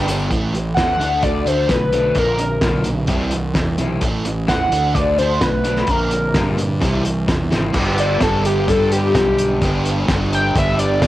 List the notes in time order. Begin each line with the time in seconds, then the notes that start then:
Already playing: G1
0.07 G2 D3 G3 B3 D4 G4, closed hi-hat, tambourine
0.19 tambourine
0.30 A1 A2 E3 A3, muted overdriven electric guitar stroke, kick, closed hi-hat
0.53 A2 E3, muted overdriven electric guitar stroke, closed hi-hat
0.75 E2 A2 E3 A3 C4 E4 F#5, kick, snare, closed hi-hat
1.00 D2 D3 A3 D4, muted overdriven electric guitar stroke, closed hi-hat
1.22 D3 F#3 A3 D4 D5, kick, closed hi-hat
1.46 D3 A3 D4 C5, muted overdriven electric guitar stroke, closed hi-hat
1.67 B1 D3 A3 B4, muted overdriven electric guitar stroke, kick, snare, closed hi-hat
1.92 D3 F#3 A3 D4, closed hi-hat
2.15 A#1 A#2 D3 A#3, muted overdriven electric guitar stroke, kick, closed hi-hat
2.19 A#4
2.38 A#2 D3, muted overdriven electric guitar stroke, closed hi-hat
2.61 B1 A#2 D3 F3 A#3 D4, kick, snare, closed hi-hat
2.84 A#2 D3, muted overdriven electric guitar stroke, closed hi-hat
3.07 C2 C3 E3 G3 C4 E4, kick, closed hi-hat
3.31 C3 E3, muted overdriven electric guitar stroke, closed hi-hat
3.54 E2 C3 E3, muted overdriven electric guitar stroke, kick, snare, closed hi-hat
3.78 B1 C3 E3 G3 C4 E4, closed hi-hat
4.01 A1 A2 E3 A3, muted overdriven electric guitar stroke, kick, closed hi-hat
4.25 A2 E3, muted overdriven electric guitar stroke, closed hi-hat
4.47 E2 A2 E3 A3 C4 E4 F#5, kick, snare, closed hi-hat
4.71 D2 D3 A3 D4, muted overdriven electric guitar stroke, closed hi-hat
4.94 D3 F#3 A3 D4 D5, kick, closed hi-hat
5.17 D3 A3 D4 C5, muted overdriven electric guitar stroke, closed hi-hat
5.40 B1 D3 A3 B4, muted overdriven electric guitar stroke, kick, snare, closed hi-hat
5.64 D3 F#3 A3 D4, closed hi-hat
5.76 snare
5.87 A#1 A#2 D3 A#3 A#4, muted overdriven electric guitar stroke, kick, closed hi-hat
6.11 A#2 D3, muted overdriven electric guitar stroke, closed hi-hat
6.34 G2 A#2 D3 F3 A#3 D4, kick, snare, closed hi-hat
6.57 A#2 D3, muted overdriven electric guitar stroke, closed hi-hat
6.81 C2 C3 E3 G3 C4 E4, kick, closed hi-hat
7.03 C3 E3, muted overdriven electric guitar stroke, closed hi-hat
7.27 E2 C3 E3, muted overdriven electric guitar stroke, kick, snare, closed hi-hat
7.51 G#1 C3 E3 G3 C4 E4, snare, closed hi-hat
7.73 G1 G2 D3 G3 B3 D4 G4, kick, crash
7.77 D4
7.98 D5, closed hi-hat
8.20 G1 A4, kick, snare, closed hi-hat
8.45 G4, closed hi-hat
8.68 G2 D3 G3 B3 D4 A4, kick, closed hi-hat
8.92 G4, closed hi-hat
9.14 B1, kick, snare, closed hi-hat
9.38 closed hi-hat
9.61 G1 G2 D3 G3 B3 D4 G4, kick, closed hi-hat
9.85 closed hi-hat
10.08 G1, kick, snare, closed hi-hat
10.33 G5, closed hi-hat
10.55 G1 G2 D3 G3 B3 D4 E5, kick, closed hi-hat
10.79 D5, closed hi-hat
11.02 B1, kick, snare, closed hi-hat